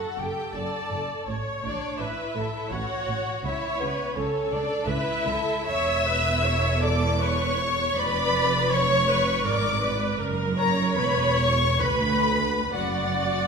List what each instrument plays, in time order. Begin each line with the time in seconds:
Already playing: violin section F#4 F#5, viola section A4
0.17 double bass section F#1, cello section F#2, violin section G4 G5
0.53 double bass section F#1, cello section F#2, violin section A4 A5, viola section D5
0.91 double bass section F#1, cello section F#2
1.27 double bass section A1, cello section A2, viola section C#5
1.63 double bass section A1, cello section A2, violin section D4 D5
1.99 double bass section A1, cello section A2, violin section E4 E5, viola section B4
2.35 double bass section A1, cello section A2, viola section A4
2.71 double bass section A1, cello section A2, violin section F#4 F#5, viola section C#5
3.08 double bass section A1, cello section A2
3.43 double bass section C#2, cello section C#3, violin section E4 E5, viola section C#5
3.79 double bass section C#2, cello section C#3, violin section B3 B4
4.15 double bass section C#2, cello section C#3, violin section C#4 C#5, viola section A4
4.51 double bass section C#2, cello section C#3, violin section D4 D5
4.86 double bass section C#2, cello section C#3, violin section E4 E5, viola section B4
5.26 double bass section C#2, cello section C#3, viola section A4
5.67 double bass section E1, cello section E2, viola section C#5, violin section E5 E6
6.06 viola section B4
6.43 viola section C#5
6.82 viola section A4, violin section D5 D6
7.21 viola section B4, violin section C#5 C#6
7.59 viola section C#5
7.97 double bass section F1, cello section F2, violin section B4 B5, viola section D5
8.71 viola section C#5, violin section C#5 C#6
9.08 viola section B4
9.44 double bass section G#1, cello section G#2, viola section A#4, violin section D5 D6
9.82 viola section B4
10.19 double bass section F#1, cello section F#2, viola section A#4
10.58 violin section A#4 A#5, viola section C#5
10.96 double bass section E1, cello section E2, violin section B4 B5
11.37 violin section C#5 C#6
11.80 double bass section D2, cello section D2, viola section B4, violin section B4 B5
12.74 double bass section F#1, cello section F#2, violin section F#4 F#5, viola section D5